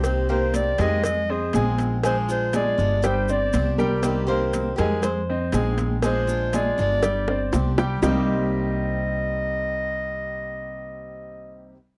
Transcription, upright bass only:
\new Staff \with { instrumentName = "Upright bass" } { \clef bass \time 4/4 \key c \minor \tempo 4 = 120 c,4. f,4. bes,,4~ | bes,,4. g,,4. c,4~ | c,4. f,4. bes,,4~ | bes,,4. g,,4. c,4 |
c,1~ | c,1 | }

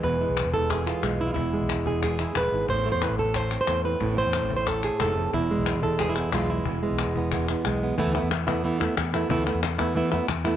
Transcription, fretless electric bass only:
\new Staff \with { instrumentName = "Fretless electric bass" } { \clef bass \time 4/4 \tempo 4 = 181 e,,8. b,,8 e,,4.~ e,,16 b,,4 | e,,8. b,,8 e,,4.~ e,,16 e,,8 gis,,8 | a,,8. e,8 a,,4.~ a,,16 e,4 | a,,8. e,8 a,,4.~ a,,16 f,,4 |
e,,8. b,,8 e,,4.~ e,,16 b,,4 | e,,8. b,,8 e,,4.~ e,,16 b,,4 | e,16 d,8 e,4.~ e,16 e,16 r16 e,4 | e,16 d,8 e,4.~ e,16 e,16 r16 e,4 | }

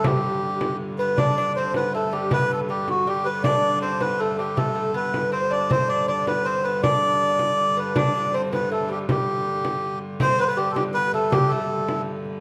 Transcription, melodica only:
\new Staff \with { instrumentName = "Melodica" } { \time 3/4 \key g \major \tempo 4 = 160 g'2 r8 b'8 | d''4 c''8 b'8 a'8 g'8 | b'8 a'8 g'8 fis'8 g'8 b'8 | d''4 c''8 b'8 a'8 g'8 |
a'4 b'4 c''8 d''8 | c''8 d''8 d''8 b'8 c''8 b'8 | d''2~ d''8 b'8 | d''4 c''8 b'8 a'8 g'8 |
g'2~ g'8 r8 | c''8 b'32 c''32 b'16 g'16. a'32 g'8 b'8 a'8 | g'8 a'4. r4 | }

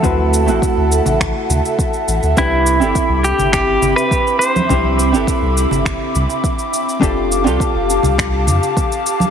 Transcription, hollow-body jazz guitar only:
\new Staff \with { instrumentName = "Hollow-body jazz guitar" } { \time 4/4 \key c \major \tempo 4 = 103 <a c' e' fis' b'>8. <a c' e' fis' a'>2.~ <a c' e' fis' a'>16 | <c' d' e' g' b'>8. <c' d' e' g' a'>2.~ <c' d' e' g' a'>16 | <c' d' e' g' c''>8. <c' d' e' g' a'>2.~ <c' d' e' g' a'>16 | <c' d' f' g' a'>8. <c' d' f' g' a'>2.~ <c' d' f' g' a'>16 | }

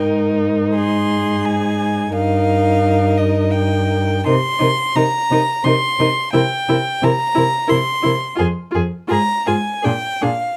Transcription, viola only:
\new Staff \with { instrumentName = "Viola" } { \time 3/4 \key c \minor \tempo 4 = 86 ees'2. | ees'2. | ees'8 ees'8 ees'8 ees'8 ees'8 ees'8 | e'8 e'8 e'8 e'8 e'8 e'8 |
f'8 f'8 f'8 f'8 d'8 d'8 | }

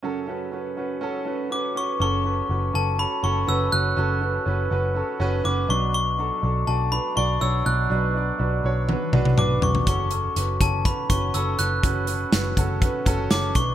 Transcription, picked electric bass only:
\new Staff \with { instrumentName = "Picked electric bass" } { \clef bass \time 4/4 \key fis \phrygian \tempo 4 = 122 r1 | fis,,4 fis,,8 fis,,8. r16 fis,,8 fis,,8 fis,,8 | fis,,4 fis,,8 fis,,8. r16 fis,,8 fis,,8 b,,8~ | b,,4 b,,8 b,,8. r16 b,,8 b,,8 b,,8 |
b,,4 b,,8 b,,8. r16 b,,8 b,,8 b,,8 | fis,,4 fis,,8 fis,,8. r16 fis,,8 fis,,8 fis,,8 | fis,,4 fis,,8 fis,,8. r16 fis,,8 fis,,8 b,,8 | }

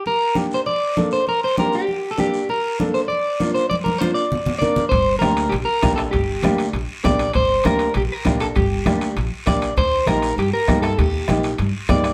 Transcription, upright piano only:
\new Staff \with { instrumentName = "Upright piano" } { \time 4/4 \key g \minor \tempo 4 = 198 r4 <bes d' g'>8 r4. <bes d' a'>8 r8 | r4 <bes d' g'>8 r4. <bes d' g'>8 r8 | r4 <bes d' a'>8 r4. <bes d' f'>8 r8 | r4 <bes d' f'>8 r4. <bes d' bes'>8 r8 |
r4 <bes d' g'>8 r4. <bes d' g'>8 r8 | r4 <bes d' g'>8 r4. <bes d' g'>8 r8 | r4 <bes d' g'>8 r4. <bes d' g'>8 r8 | r4 <bes d' g'>8 r4. <bes d' g'>8 r8 |
r4 <bes ees' g'>8 r4. <bes ees' g'>8 r8 | r4 <bes ees' g'>8 r4. <bes ees' g'>8 r8 | }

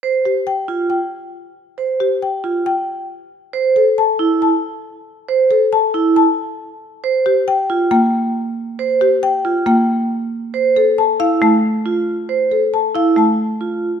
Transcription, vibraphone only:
\new Staff \with { instrumentName = "Vibraphone" } { \time 4/4 \key f \major \tempo 4 = 137 c''8 r4 f'8 r2 | c''8 r4 f'8 r2 | c''8 r4 e'8 r2 | c''8 r4 e'8 r2 |
c''8 r4 f'8 r2 | c''8 r4 f'8 r2 | c''8 r4 e'8 r4 f'8 r8 | c''8 r4 e'8 r4 f'8 r8 | }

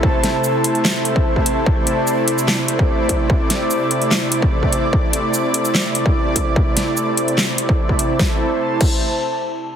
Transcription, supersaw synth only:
\new Staff \with { instrumentName = "Supersaw synth" } { \time 4/4 \key a \minor \tempo 4 = 147 << { a'1 | d''1~ | d''1~ | d''1~ |
d''1 | <c a e' a'>8 r2. r8 | } \\ { <c a e'>1~ | <c a e'>1~ | <c a e'>1~ | <c a e'>1~ |
<c a e'>1 | r1 | } >> }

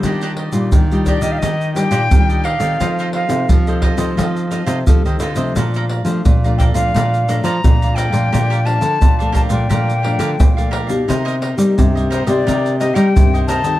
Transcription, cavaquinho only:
\new Staff \with { instrumentName = "Cavaquinho" } { \time 4/4 \key bes \major \tempo 4 = 87 <d' g' d'' ees''>16 <d' g' d'' ees''>16 <g' d'' ees''>8. <g' d'' ees''>16 <d' g' d'' ees''>16 <g' d'' ees''>16 <g' ees''>8 <d' g' d'' ees''>16 <d' g' d'' ees''>16 r16 <g' d'' ees''>16 <d' g' d'' ees''>16 <g' d'' ees''>16 | <f' a' c'' ees''>16 <f' a' c'' ees''>16 <f' a' c'' ees''>8. <a' c'' ees''>16 <f' a' c'' ees''>16 <a' c'' ees''>16 <f' a' c'' ees''>8 <f' a' c'' ees''>16 <f' a' c'' ees''>16 r16 <a' c'' ees''>16 <f' a' c'' ees''>16 <a' c'' ees''>16 | <a' d'' f'' bes''>16 <a' d'' f'' bes''>16 <d'' f'' bes''>8. <d'' f'' bes''>16 <a' d'' f'' bes''>16 <d'' f'' bes''>16 <d'' f'' bes''>8 <a' d'' f'' bes''>16 <a' d'' f'' bes''>16 r16 <d'' f'' bes''>16 <a' d'' f'' bes''>16 <d'' f'' bes''>16 | <g' bes' d'' f''>16 <g' bes' d'' f''>16 <g' bes' d'' f''>8. <bes' d'' f''>16 <g' bes' d'' f''>16 <bes' d'' f''>16 <g' bes' d'' f''>8 <g' bes' d'' f''>16 <g' bes' d'' f''>16 r16 <bes' d'' f''>16 <g' bes' d'' f''>16 <bes' d'' f''>16 |
<ees' bes' c'' ees''>16 <ees' bes' c'' ees''>16 <ees' bes' c'' ees''>8. <bes' c'' ees''>16 <ees' bes' c'' ees''>16 <bes' c'' ees''>16 <ees' bes' c''>8 <ees' bes' c'' ees''>16 <ees' bes' c'' ees''>16 r16 <bes' c'' ees''>16 <ees' bes' c'' ees''>16 <bes' c'' ees''>16 | }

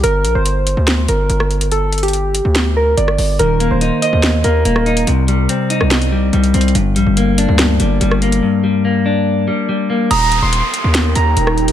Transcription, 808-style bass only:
\new Staff \with { instrumentName = "808-style bass" } { \clef bass \time 4/4 \key g \minor \tempo 4 = 143 g,,8 bes,,16 g,,4 d,8. g,,8 g,,4~ | g,,4.~ g,,16 d,4~ d,16 g,,8 g,,8 | ees,,8. ees,,8 r8 ees,8. ees,8 ees,,4 | c,4 r8. c,4~ c,16 c,8 c,8 |
g,,8 bes,,16 g,,4 d,8. g,,8 g,,4 | r1 | ees,,8. ees,,8 r8 ees,8. ees,8 ees,,4 | }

